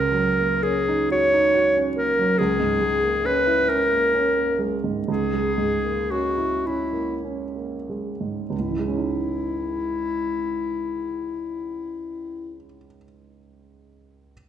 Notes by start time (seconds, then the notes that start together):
Already playing: C#2 C#3 A#4
0.12 F#3
0.38 A#3
0.63 C#4 G#4
0.88 D#4
1.11 F#4 C#5
1.33 D#4
1.55 F#4
1.77 C#4
1.97 A#3 A#4
2.19 F#3
2.38 C#2 G#4
2.60 G#2
2.82 G#3
3.03 A#3
3.25 C#4 B4
3.47 E4
3.68 C#4 A#4
3.91 A#3
4.14 C#4
4.37 A#3
4.59 G#3
4.84 G#2
5.08 C#2 G#4
5.34 G#3
5.58 G#2
5.84 A#3
6.11 C#4 F#4
6.38 E4
6.66 C#4 E4
6.93 A#3
7.25 C#4
7.56 A#3
7.89 G#3
8.21 G#2
8.50 C#2 E4
8.59 G#2
8.69 E3
8.79 G#3
8.88 C#4
8.97 D#4